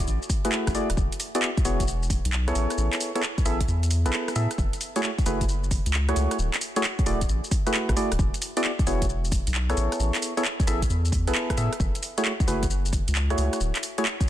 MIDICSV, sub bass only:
0, 0, Header, 1, 2, 480
1, 0, Start_track
1, 0, Key_signature, 3, "minor"
1, 0, Tempo, 451128
1, 1035, Time_signature, 4, 2, 24, 8
1, 15207, End_track
2, 0, Start_track
2, 0, Title_t, "Sub bass"
2, 0, Program_c, 0, 38
2, 74, Note_on_c, 0, 33, 97
2, 199, Note_off_c, 0, 33, 0
2, 715, Note_on_c, 0, 33, 83
2, 777, Note_off_c, 0, 33, 0
2, 955, Note_on_c, 0, 26, 86
2, 1017, Note_off_c, 0, 26, 0
2, 1034, Note_on_c, 0, 28, 95
2, 1159, Note_off_c, 0, 28, 0
2, 1755, Note_on_c, 0, 28, 86
2, 2337, Note_off_c, 0, 28, 0
2, 2394, Note_on_c, 0, 35, 93
2, 2686, Note_off_c, 0, 35, 0
2, 2715, Note_on_c, 0, 33, 103
2, 2839, Note_off_c, 0, 33, 0
2, 2954, Note_on_c, 0, 33, 97
2, 3079, Note_off_c, 0, 33, 0
2, 3675, Note_on_c, 0, 33, 80
2, 3879, Note_off_c, 0, 33, 0
2, 3914, Note_on_c, 0, 40, 95
2, 4314, Note_on_c, 0, 33, 92
2, 4330, Note_off_c, 0, 40, 0
2, 4376, Note_off_c, 0, 33, 0
2, 4635, Note_on_c, 0, 45, 93
2, 4759, Note_off_c, 0, 45, 0
2, 4876, Note_on_c, 0, 30, 103
2, 5000, Note_off_c, 0, 30, 0
2, 5594, Note_on_c, 0, 30, 86
2, 6177, Note_off_c, 0, 30, 0
2, 6236, Note_on_c, 0, 37, 93
2, 6527, Note_off_c, 0, 37, 0
2, 6556, Note_on_c, 0, 37, 98
2, 6680, Note_off_c, 0, 37, 0
2, 6795, Note_on_c, 0, 26, 95
2, 6919, Note_off_c, 0, 26, 0
2, 7514, Note_on_c, 0, 26, 83
2, 7719, Note_off_c, 0, 26, 0
2, 7755, Note_on_c, 0, 33, 90
2, 7879, Note_off_c, 0, 33, 0
2, 8395, Note_on_c, 0, 33, 84
2, 8457, Note_off_c, 0, 33, 0
2, 8636, Note_on_c, 0, 26, 83
2, 8697, Note_off_c, 0, 26, 0
2, 8715, Note_on_c, 0, 28, 104
2, 8839, Note_off_c, 0, 28, 0
2, 9434, Note_on_c, 0, 28, 87
2, 10017, Note_off_c, 0, 28, 0
2, 10077, Note_on_c, 0, 35, 90
2, 10367, Note_off_c, 0, 35, 0
2, 10395, Note_on_c, 0, 33, 101
2, 10519, Note_off_c, 0, 33, 0
2, 10636, Note_on_c, 0, 33, 101
2, 10760, Note_off_c, 0, 33, 0
2, 11355, Note_on_c, 0, 33, 85
2, 11559, Note_off_c, 0, 33, 0
2, 11595, Note_on_c, 0, 40, 100
2, 11996, Note_on_c, 0, 33, 90
2, 12011, Note_off_c, 0, 40, 0
2, 12057, Note_off_c, 0, 33, 0
2, 12314, Note_on_c, 0, 45, 98
2, 12439, Note_off_c, 0, 45, 0
2, 12554, Note_on_c, 0, 30, 99
2, 12679, Note_off_c, 0, 30, 0
2, 13274, Note_on_c, 0, 30, 80
2, 13857, Note_off_c, 0, 30, 0
2, 13917, Note_on_c, 0, 37, 86
2, 14207, Note_off_c, 0, 37, 0
2, 14235, Note_on_c, 0, 37, 98
2, 14359, Note_off_c, 0, 37, 0
2, 14475, Note_on_c, 0, 26, 101
2, 14599, Note_off_c, 0, 26, 0
2, 15207, End_track
0, 0, End_of_file